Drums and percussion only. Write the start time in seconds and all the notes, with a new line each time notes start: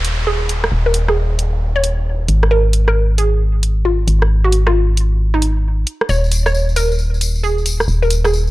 0.05 open hi-hat
0.49 open hi-hat
0.64 cross-stick
0.94 open hi-hat
1.08 cross-stick
1.39 open hi-hat
1.84 open hi-hat
2.28 open hi-hat
2.43 cross-stick
2.73 open hi-hat
2.88 cross-stick
3.18 open hi-hat
3.63 open hi-hat
4.08 open hi-hat
4.22 cross-stick
4.52 open hi-hat
4.67 cross-stick
4.97 open hi-hat
5.42 open hi-hat
5.87 open hi-hat
6.01 cross-stick
6.09 tambourine
6.24 tambourine
6.32 open hi-hat, tambourine
6.46 cross-stick, tambourine
6.54 tambourine
6.69 tambourine
6.76 open hi-hat, tambourine
6.92 tambourine
6.99 tambourine
7.14 tambourine
7.21 open hi-hat, tambourine
7.36 tambourine
7.44 tambourine
7.58 tambourine
7.66 open hi-hat, tambourine
7.80 cross-stick, tambourine
7.88 tambourine
8.03 tambourine
8.10 open hi-hat, tambourine
8.25 cross-stick, tambourine
8.33 tambourine
8.47 tambourine